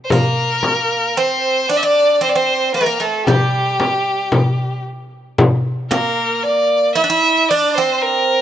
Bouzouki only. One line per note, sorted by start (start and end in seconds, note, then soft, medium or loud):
0.12 1.17 A#3 medium
1.17 1.66 C4 medium
1.69 1.82 D4 medium
1.83 2.23 D4 medium
2.21 2.34 C4 medium
2.35 2.74 C4 medium
2.74 2.80 A#3 medium
2.81 2.86 A3 medium
2.86 2.99 A#3 medium
3.00 3.28 A3 medium
3.28 4.82 G3 medium
5.91 7.00 A#3 medium
6.96 7.03 E4 medium
7.04 7.09 D4 medium
7.10 7.50 E4 medium
7.51 7.77 D4 medium
7.78 8.42 C4 medium